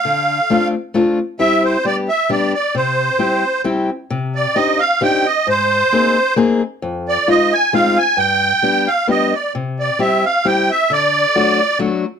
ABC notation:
X:1
M:3/4
L:1/8
Q:"Swing" 1/4=133
K:C
V:1 name="Accordion"
f3 z3 | e c d e d d | c4 z2 | [K:Cm] z d e f g e |
c4 z2 | z d e a f a | g3 f e d | z d =e f g e |
d4 z2 |]
V:2 name="Steel-string acoustic guitar"
D,2 [A,CDF] z [A,CDF] z | [G,CEG]2 [G,B,DG] z [G,B,DG] z | C,2 [G,CEG] z [G,CEG] z | [K:Cm] C,2 [CDEG] z [CDEG] z |
A,,2 [B,CEA] z [B,CEA] z | F,,2 [A,CEF] z [A,CEF] z | G,,2 [G,=B,DG] z [G,B,DG] z | C,2 [G,C=EG] z [G,CEG] z |
D,2 [^F,=A,D^F] z [F,A,DF] z |]